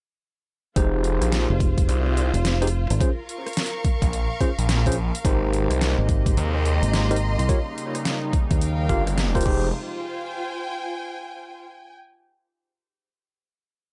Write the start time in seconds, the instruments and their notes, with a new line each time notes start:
0.76 detuned saw bass F1, tine electric piano D#4 G4 G#4 C5, string section F4, kick, closed hi-hat
1.04 closed hi-hat
1.09 string section C5
1.21 detuned saw bass A#1, cross-stick, closed hi-hat
1.32 snare, closed hi-hat
1.50 fingered electric bass F1
1.60 kick, closed hi-hat
1.78 kick, closed hi-hat
1.88 detuned saw bass C2, closed hi-hat
2.06 cross-stick
2.17 closed hi-hat
2.33 fingered electric bass F1, closed hi-hat
2.45 snare, closed hi-hat
2.62 tine electric piano D#4 G4 G#4 C5, cross-stick, closed hi-hat
2.67 closed hi-hat
2.90 fingered electric bass G#1, closed hi-hat
3.00 tine electric piano C#4 F4 G#4 C5, string section A#4, kick, closed hi-hat
3.15 string section F5
3.26 string section C#6, closed hi-hat
3.47 cross-stick, closed hi-hat
3.53 snare, closed hi-hat
3.57 closed hi-hat
3.63 closed hi-hat
3.66 closed hi-hat
3.85 kick, closed hi-hat
4.02 detuned saw bass A#1, kick, closed hi-hat
4.13 closed hi-hat
4.41 tine electric piano C#4 F4 G#4 C5, kick, closed hi-hat
4.58 detuned saw bass A#1, closed hi-hat
4.69 snare, closed hi-hat
4.86 tine electric piano C#4 F4 G#4 C5, kick, closed hi-hat
4.92 closed hi-hat
5.15 closed hi-hat
5.25 detuned saw bass G#1, analog synth pad C3 G#3 A#3 G4, string section G#3, tine electric piano D#4 G4 A#4 C5, kick, closed hi-hat
5.53 closed hi-hat
5.70 detuned saw bass C2, cross-stick, closed hi-hat
5.78 string section D#5, snare, closed hi-hat
5.98 fingered electric bass G#1
6.09 kick, closed hi-hat
6.26 string section A#5 C6, kick, closed hi-hat
6.37 detuned saw bass D#2, closed hi-hat
6.55 cross-stick
6.65 closed hi-hat
6.83 fingered electric bass G#1, closed hi-hat
6.94 snare, closed hi-hat
7.11 tine electric piano D#4 G4 A#4 C5, cross-stick, closed hi-hat
7.16 closed hi-hat
7.39 fingered electric bass C2, closed hi-hat
7.48 analog synth pad C#3 G3 D#4, string section D#4, tine electric piano F4 G4 A#4 C#5, kick, closed hi-hat
7.78 closed hi-hat
7.95 cross-stick, closed hi-hat
8.05 snare, closed hi-hat
8.25 string section A#4
8.33 kick, closed hi-hat
8.51 fingered electric bass D#2, string section F5 G5, kick, closed hi-hat
8.61 closed hi-hat
8.89 detuned saw bass G1, tine electric piano F4 G4 A#4 F5, kick, closed hi-hat
9.07 cross-stick, closed hi-hat
9.18 snare, closed hi-hat
9.35 tine electric piano F4 G4 A#4 C5, kick, closed hi-hat
9.41 closed hi-hat
9.43 detuned saw bass F1, analog synth pad C3 F3 G#3 D#4, tine electric piano D#4 G4 G#4 C5, string section F4, kick, closed hi-hat, crash
9.55 string section C5
9.92 string section G5
10.00 string section G#5